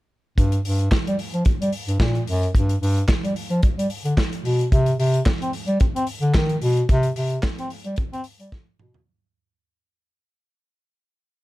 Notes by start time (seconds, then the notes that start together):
0.38 G2, kick, closed hi-hat
0.52 closed hi-hat
0.65 G2, open hi-hat
0.79 closed hi-hat
0.92 G3, kick, snare, clap
1.07 G3, closed hi-hat
1.19 open hi-hat
1.34 F3, closed hi-hat
1.45 G3, kick, closed hi-hat
1.61 G3, closed hi-hat
1.72 open hi-hat
1.88 G2, closed hi-hat
2.00 A#2, kick, snare, clap
2.15 closed hi-hat
2.27 F#2, open hi-hat
2.43 closed hi-hat
2.55 G2, kick, closed hi-hat
2.69 closed hi-hat
2.82 G2, open hi-hat
2.97 closed hi-hat
3.08 G3, kick, snare, clap
3.23 G3, closed hi-hat
3.36 open hi-hat
3.50 F3, closed hi-hat
3.63 G3, kick, closed hi-hat
3.77 G3, closed hi-hat
3.90 open hi-hat
4.05 D3, closed hi-hat
4.17 kick, snare, clap
4.33 closed hi-hat
4.45 B2, open hi-hat
4.61 closed hi-hat
4.72 C3, kick, closed hi-hat
4.86 closed hi-hat
4.99 C3, open hi-hat
5.14 closed hi-hat
5.26 C4, kick, snare, clap
5.41 C4, closed hi-hat
5.53 open hi-hat
5.68 G3, closed hi-hat
5.80 C4, kick, closed hi-hat
5.95 C4, closed hi-hat
6.07 open hi-hat
6.22 D3, closed hi-hat
6.34 D#3, kick, snare, clap
6.49 closed hi-hat
6.62 B2, open hi-hat
6.77 closed hi-hat
6.89 C3, kick, closed hi-hat
7.03 closed hi-hat
7.16 C3, open hi-hat
7.30 closed hi-hat
7.43 C4, kick, snare, clap
7.58 C4, closed hi-hat
7.70 open hi-hat
7.84 G3, closed hi-hat
7.96 C4, kick, closed hi-hat
8.12 C4, closed hi-hat
8.24 open hi-hat
8.40 G3, closed hi-hat
8.52 kick, snare
8.79 B2, mid tom
8.94 floor tom